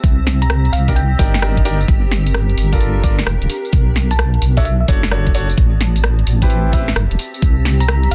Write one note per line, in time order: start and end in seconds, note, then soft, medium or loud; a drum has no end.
0.00 0.70 C2 loud
0.00 2.64 C4 medium
0.00 3.73 G4 medium
0.00 1.88 D#5 medium
0.00 kick loud
0.00 closed hi-hat medium
0.00 tambourine soft
0.27 snare medium
0.27 open hi-hat loud
0.27 tambourine medium
0.42 0.71 A#5 medium
0.42 closed hi-hat medium
0.42 tambourine soft
0.50 cross-stick loud
0.50 tambourine soft
0.65 closed hi-hat soft
0.73 1.16 C2 loud
0.73 3.73 A#4 medium
0.73 0.90 F5 medium
0.73 open hi-hat loud
0.73 tambourine medium
0.88 0.94 D4 medium
0.88 0.94 D#4 medium
0.88 0.94 G4 medium
0.88 0.94 A#4 medium
0.88 kick medium
0.88 closed hi-hat medium
0.88 tambourine soft
0.96 1.42 G5 medium
0.96 closed hi-hat medium
0.96 tambourine soft
1.19 1.85 G1 medium
1.19 1.31 D4 medium
1.19 1.31 D#4 medium
1.19 1.31 G4 medium
1.19 1.31 A#4 loud
1.19 kick loud
1.19 open hi-hat loud
1.19 tambourine medium
1.34 snare medium
1.34 closed hi-hat soft
1.34 tambourine soft
1.42 1.59 D4 medium
1.42 1.59 D#4 medium
1.42 1.59 G4 medium
1.42 1.59 A#4 medium
1.42 cross-stick loud
1.42 tambourine soft
1.57 kick medium
1.57 closed hi-hat medium
1.65 1.77 D4 loud
1.65 1.77 D#4 medium
1.65 1.77 G4 medium
1.65 1.77 A#4 loud
1.65 open hi-hat medium
1.65 tambourine medium
1.80 tambourine soft
1.88 2.55 G1 loud
1.88 4.48 D4 loud
1.88 kick loud
1.88 closed hi-hat medium
1.88 tambourine soft
2.12 snare medium
2.12 open hi-hat loud
2.12 tambourine medium
2.26 closed hi-hat medium
2.26 tambourine soft
2.34 cross-stick loud
2.50 closed hi-hat soft
2.57 3.24 G1 loud
2.57 open hi-hat loud
2.57 tambourine medium
2.72 3.02 D4 medium
2.72 3.02 F4 medium
2.72 3.02 A4 medium
2.72 3.02 A#4 medium
2.72 kick medium
2.72 closed hi-hat medium
2.72 tambourine soft
2.81 closed hi-hat medium
2.81 tambourine soft
3.04 3.15 D4 medium
3.04 3.15 F4 medium
3.04 3.15 A4 medium
3.04 3.15 A#4 medium
3.04 3.21 D5 medium
3.04 kick loud
3.04 open hi-hat loud
3.04 tambourine medium
3.19 snare medium
3.19 closed hi-hat medium
3.19 tambourine soft
3.27 3.38 F1 medium
3.27 cross-stick loud
3.27 tambourine soft
3.42 3.48 D1 medium
3.42 closed hi-hat medium
3.50 open hi-hat medium
3.50 tambourine medium
3.65 tambourine soft
3.73 4.39 B1 loud
3.73 5.58 B3 medium
3.73 kick loud
3.73 closed hi-hat medium
3.73 tambourine soft
3.90 5.58 F#4 medium
3.96 snare soft
3.96 open hi-hat loud
3.96 tambourine medium
4.11 6.24 D5 medium
4.11 4.41 A5 medium
4.11 closed hi-hat medium
4.11 tambourine soft
4.19 cross-stick loud
4.19 tambourine soft
4.34 closed hi-hat soft
4.42 4.85 B1 loud
4.42 open hi-hat medium
4.42 tambourine medium
4.57 4.64 D4 medium
4.57 4.63 F#4 medium
4.57 4.63 A4 medium
4.57 4.63 C#5 medium
4.57 4.64 E5 medium
4.57 7.19 A5 loud
4.57 kick medium
4.57 closed hi-hat medium
4.57 tambourine soft
4.65 4.75 E5 medium
4.65 closed hi-hat medium
4.65 tambourine soft
4.80 4.86 E5 medium
4.88 5.55 F#1 medium
4.88 5.00 D4 medium
4.88 5.00 F#4 medium
4.88 5.00 A4 medium
4.88 5.00 C#5 loud
4.88 kick loud
4.88 open hi-hat loud
4.88 tambourine medium
5.03 snare medium
5.03 closed hi-hat medium
5.03 tambourine soft
5.11 5.28 D4 medium
5.11 5.28 F#4 medium
5.11 5.28 A4 medium
5.11 5.28 C#5 medium
5.11 cross-stick loud
5.11 tambourine soft
5.27 kick medium
5.27 closed hi-hat medium
5.34 5.46 D4 loud
5.34 5.46 F#4 loud
5.34 5.46 A4 medium
5.34 5.46 C#5 loud
5.34 open hi-hat medium
5.34 tambourine medium
5.50 tambourine soft
5.58 6.24 A1 loud
5.58 8.15 C4 medium
5.58 kick loud
5.58 closed hi-hat medium
5.58 tambourine soft
5.76 8.15 G4 loud
5.81 7.19 E5 medium
5.81 snare soft
5.81 open hi-hat loud
5.81 tambourine medium
5.96 closed hi-hat medium
5.96 tambourine soft
6.04 cross-stick loud
6.19 closed hi-hat soft
6.27 6.93 A1 loud
6.27 open hi-hat medium
6.27 tambourine medium
6.42 6.71 C4 medium
6.42 6.71 E4 medium
6.42 6.71 G4 medium
6.42 6.71 B4 medium
6.42 kick medium
6.42 closed hi-hat medium
6.42 tambourine soft
6.50 closed hi-hat medium
6.50 tambourine soft
6.73 6.85 C4 medium
6.73 6.85 E4 medium
6.73 6.85 G4 medium
6.73 6.85 B4 medium
6.73 6.90 E5 loud
6.73 kick loud
6.73 open hi-hat loud
6.73 tambourine medium
6.88 snare medium
6.88 closed hi-hat medium
6.88 tambourine soft
6.96 7.08 G1 medium
6.96 cross-stick loud
6.96 tambourine soft
7.11 7.17 E1 medium
7.11 closed hi-hat medium
7.19 open hi-hat medium
7.19 tambourine medium
7.34 8.15 D#5 medium
7.34 tambourine soft
7.42 8.09 C2 loud
7.42 kick loud
7.42 closed hi-hat medium
7.42 tambourine soft
7.65 snare soft
7.65 open hi-hat loud
7.65 tambourine medium
7.80 8.10 A#5 medium
7.80 closed hi-hat medium
7.80 tambourine soft
7.88 cross-stick loud
7.88 tambourine soft
8.03 closed hi-hat soft
8.11 8.15 C2 loud
8.11 8.15 F5 medium
8.11 open hi-hat loud
8.11 tambourine medium